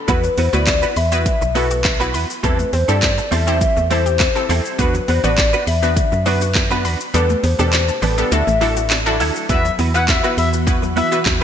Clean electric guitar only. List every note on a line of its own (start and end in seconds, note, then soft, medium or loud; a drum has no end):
0.08 0.23 B3 medium
0.08 0.23 E4 medium
0.08 0.24 F#4 medium
0.08 0.24 B4 medium
0.37 0.49 B3 medium
0.37 0.50 E4 medium
0.37 0.50 F#4 medium
0.37 0.50 B4 medium
0.53 0.64 B3 medium
0.53 0.64 E4 medium
0.53 0.64 F#4 medium
0.53 0.64 B4 medium
0.67 muted clean electric guitar stroke soft
0.82 0.95 B3 medium
0.82 0.95 E4 medium
0.82 0.96 F#4 medium
0.82 0.96 B4 medium
0.96 muted clean electric guitar stroke soft
1.12 muted clean electric guitar stroke soft
1.41 muted clean electric guitar stroke soft
1.55 1.70 B3 medium
1.55 1.70 E4 medium
1.55 1.70 F#4 medium
1.55 1.69 B4 medium
1.71 muted clean electric guitar stroke soft
1.84 muted clean electric guitar stroke soft
2.00 2.13 B3 medium
2.00 2.13 E4 medium
2.00 2.14 F#4 medium
2.00 2.13 B4 medium
2.14 2.26 B3 medium
2.14 2.26 E4 medium
2.14 2.26 F#4 medium
2.14 2.26 B4 medium
2.29 muted clean electric guitar stroke soft
2.43 2.58 G3 medium
2.43 2.59 C4 medium
2.43 2.58 E4 medium
2.43 2.58 A4 medium
2.59 muted clean electric guitar stroke soft
2.73 muted clean electric guitar stroke soft
2.88 2.99 G3 medium
2.88 2.99 C4 medium
2.88 2.99 E4 medium
2.88 2.99 A4 medium
3.02 muted clean electric guitar stroke soft
3.18 muted clean electric guitar stroke medium
3.31 3.46 G3 medium
3.31 3.47 C4 medium
3.31 3.46 E4 medium
3.31 3.46 A4 medium
3.47 3.58 G3 medium
3.47 3.58 C4 medium
3.47 3.58 E4 medium
3.47 3.58 A4 medium
3.77 muted clean electric guitar stroke soft
3.90 4.05 G3 medium
3.90 4.06 C4 medium
3.90 4.05 E4 loud
3.90 4.05 A4 medium
4.06 muted clean electric guitar stroke soft
4.20 muted clean electric guitar stroke soft
4.36 muted clean electric guitar stroke soft
4.49 4.64 G3 loud
4.49 4.65 C4 loud
4.49 4.64 E4 loud
4.49 4.64 A4 loud
4.65 4.76 G3 medium
4.65 4.76 C4 medium
4.65 4.76 E4 medium
4.65 4.75 A4 medium
4.79 4.94 B3 medium
4.79 4.94 D4 loud
4.79 4.94 F#4 loud
4.79 4.95 B4 loud
5.08 5.20 B3 medium
5.08 5.20 D4 medium
5.08 5.20 F#4 medium
5.08 5.21 B4 medium
5.24 5.35 B3 medium
5.24 5.35 D4 medium
5.24 5.35 F#4 medium
5.24 5.34 B4 medium
5.53 5.66 B3 medium
5.53 5.66 D4 medium
5.53 5.67 F#4 medium
5.53 5.67 B4 medium
5.67 muted clean electric guitar stroke soft
5.83 muted clean electric guitar stroke soft
6.12 muted clean electric guitar stroke soft
6.26 6.41 B3 medium
6.26 6.41 D4 medium
6.26 6.41 F#4 medium
6.26 6.40 B4 medium
6.42 muted clean electric guitar stroke soft
6.55 muted clean electric guitar stroke soft
6.71 6.83 B3 medium
6.71 6.84 D4 medium
6.71 6.84 F#4 medium
6.71 6.84 B4 medium
6.84 6.96 B3 medium
6.84 6.97 D4 medium
6.84 6.97 F#4 medium
6.84 6.97 B4 medium
7.00 muted clean electric guitar stroke medium
7.14 7.29 G3 medium
7.14 7.29 B3 medium
7.14 7.29 D4 medium
7.14 7.28 A4 medium
7.29 muted clean electric guitar stroke medium
7.43 muted clean electric guitar stroke soft
7.59 7.70 G3 medium
7.59 7.70 B3 medium
7.59 7.70 D4 medium
7.59 7.69 A4 medium
7.73 muted clean electric guitar stroke soft
7.89 muted clean electric guitar stroke soft
8.02 8.17 G3 medium
8.02 8.17 B3 medium
8.02 8.17 D4 medium
8.02 8.17 A4 medium
8.18 8.29 G3 medium
8.18 8.29 B3 medium
8.18 8.29 D4 medium
8.18 8.28 A4 medium
8.47 muted clean electric guitar stroke soft
8.61 8.76 F#3 medium
8.61 8.76 A3 medium
8.61 8.76 E4 loud
8.61 8.76 A4 medium
8.77 muted clean electric guitar stroke soft
8.90 muted clean electric guitar stroke medium
9.06 muted clean electric guitar stroke soft
9.20 9.35 F#3 medium
9.20 9.35 A3 medium
9.20 9.35 E4 medium
9.20 9.34 A4 loud
9.35 9.47 F#3 medium
9.35 9.46 A3 medium
9.35 9.46 E4 medium
9.35 9.46 A4 medium
9.49 9.64 B3 medium
9.49 9.64 E4 medium
9.49 9.65 F#4 medium
9.49 9.65 B4 medium
9.79 9.90 B3 medium
9.79 9.91 E4 medium
9.79 9.91 F#4 medium
9.79 9.91 B4 medium
9.94 10.05 B3 medium
9.94 10.05 E4 medium
9.94 10.05 F#4 medium
9.94 10.05 B4 medium
10.08 muted clean electric guitar stroke soft
10.23 10.36 B3 medium
10.23 10.37 E4 medium
10.23 10.37 F#4 medium
10.23 10.37 B4 medium
10.37 muted clean electric guitar stroke soft
10.53 muted clean electric guitar stroke soft
10.82 muted clean electric guitar stroke soft
10.96 11.11 B3 medium
10.96 11.12 E4 medium
10.96 11.11 F#4 medium
10.96 11.11 B4 medium
11.12 muted clean electric guitar stroke soft
11.26 muted clean electric guitar stroke soft